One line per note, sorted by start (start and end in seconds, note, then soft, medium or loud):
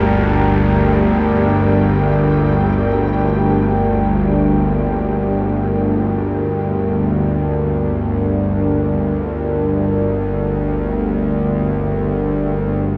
0.00 12.83 G1 medium
0.00 12.82 D2 medium
0.00 12.83 G3 medium
0.00 12.83 D4 medium
0.00 12.86 G4 medium
0.00 12.84 A#4 medium
0.00 12.83 G5 medium
12.83 12.97 G1 medium
12.83 12.97 D2 medium